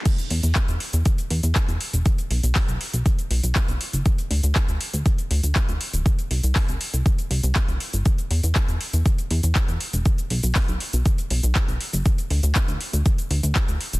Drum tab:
CC |x---------------|----------------|----------------|----------------|
HH |xxoxxxoxxxoxxxox|xxoxoxoxxxoxxxox|xxoxxxoxxxoxxxox|xxoxoxoxxxoxxxox|
SH |xx-xxx-xxx-xxx-x|xx-xxx-xxx-xxx-x|xx-xxx-xxx-xxx-x|xx-xxx-xxx-xxx-x|
CP |----x-------x---|----x-------x---|----x-------x---|----x-------x---|
BD |o---o---o---o---|o---o---o---o---|o---o---o---o---|o---o---o---o---|

CC |----------------|----------------|----------------|
HH |xxoxxxoxxxoxxxox|xxoxoxoxxxoxxxox|xxoxxxoxxxoxxxox|
SH |xx-xxx-xxx-xxx-x|xx-xxx-xxx-xxx-x|xx-xxx-xxx-xxx-x|
CP |----x-------x---|----x-------x---|----x-------x---|
BD |o---o---o---o---|o---o---o---o---|o---o---o---o---|